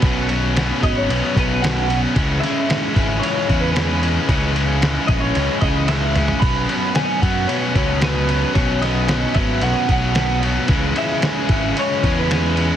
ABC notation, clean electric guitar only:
X:1
M:4/4
L:1/16
Q:1/4=112
K:C#dor
V:1 name="Clean electric guitar"
z6 d c3 B2 f3 z | z2 e6 c3 B B3 z | z6 d c3 d2 e3 z | b4 g2 f2 c4 B4 |
c2 d4 e2 f2 f4 z2 | z2 e6 c3 B B3 z |]